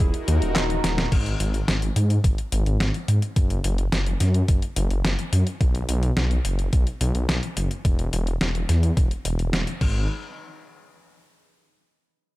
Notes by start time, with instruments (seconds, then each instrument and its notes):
0.00 detuned saw bass D#1, analog synth pad D#4 F#4 A#4, kick, closed hi-hat
0.14 closed hi-hat
0.28 detuned saw bass D#2, closed hi-hat
0.42 detuned saw bass D#1, closed hi-hat
0.56 detuned saw bass D#1, snare, clap, closed hi-hat
0.70 closed hi-hat
0.84 detuned saw bass D#1, snare, closed hi-hat
0.98 snare, closed hi-hat
1.12 detuned saw bass G#1, kick, closed hi-hat, crash
1.26 closed hi-hat
1.40 detuned saw bass G#1, closed hi-hat
1.54 closed hi-hat
1.68 detuned saw bass G#1, snare, closed hi-hat
1.82 closed hi-hat
1.96 detuned saw bass G#2, closed hi-hat
2.10 closed hi-hat
2.24 detuned saw bass G#1, kick, closed hi-hat
2.38 closed hi-hat
2.52 detuned saw bass G#1, closed hi-hat
2.66 detuned saw bass G#1, closed hi-hat
2.80 detuned saw bass G#1, snare, closed hi-hat
2.94 closed hi-hat
3.08 detuned saw bass G#2, closed hi-hat
3.22 closed hi-hat
3.36 detuned saw bass F#1, kick, closed hi-hat
3.50 closed hi-hat
3.64 detuned saw bass F#1, closed hi-hat
3.78 closed hi-hat
3.92 detuned saw bass F#1, snare, closed hi-hat
4.06 closed hi-hat
4.20 detuned saw bass F#2, snare, closed hi-hat
4.34 closed hi-hat
4.48 detuned saw bass F#1, kick, closed hi-hat
4.62 closed hi-hat
4.76 detuned saw bass F#1, closed hi-hat
4.90 detuned saw bass F#1, closed hi-hat
5.05 detuned saw bass F#1, snare, closed hi-hat
5.19 closed hi-hat
5.33 detuned saw bass F#2, closed hi-hat
5.47 closed hi-hat
5.61 detuned saw bass B1, kick, closed hi-hat
5.75 closed hi-hat
5.89 detuned saw bass B1, closed hi-hat
6.03 closed hi-hat
6.17 detuned saw bass B1, snare, closed hi-hat
6.31 closed hi-hat
6.45 detuned saw bass F#1, closed hi-hat
6.59 closed hi-hat
6.73 detuned saw bass B1, kick, closed hi-hat
6.87 closed hi-hat
7.01 detuned saw bass B1, closed hi-hat
7.15 detuned saw bass B1, closed hi-hat
7.29 detuned saw bass B1, snare, closed hi-hat
7.43 closed hi-hat
7.57 detuned saw bass F#1, closed hi-hat
7.71 closed hi-hat
7.85 detuned saw bass E1, kick, closed hi-hat
7.99 closed hi-hat
8.13 detuned saw bass E1, closed hi-hat
8.27 closed hi-hat
8.41 detuned saw bass E1, snare, closed hi-hat
8.55 closed hi-hat
8.69 detuned saw bass E2, snare, closed hi-hat
8.83 closed hi-hat
8.97 detuned saw bass E1, kick, closed hi-hat
9.11 closed hi-hat
9.25 detuned saw bass E1, closed hi-hat
9.39 detuned saw bass E1, closed hi-hat
9.53 detuned saw bass E1, snare, closed hi-hat
9.67 closed hi-hat
9.81 detuned saw bass G#1, kick, crash